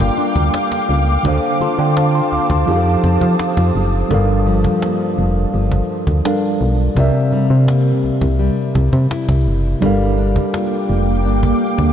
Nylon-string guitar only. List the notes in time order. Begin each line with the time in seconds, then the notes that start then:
Already playing: G3 D4 F4 A#4
0.18 D4
1.25 D3
1.61 C4 F4 A4
2.68 F3
3.04 C4
4.11 G2
4.47 F3
4.82 A#3
5.54 F3
6.25 D4
6.96 C3
7.32 G3
7.68 A#3
8.39 G3
9.11 E4
9.82 G3
10.18 D4
10.53 F4
11.25 D4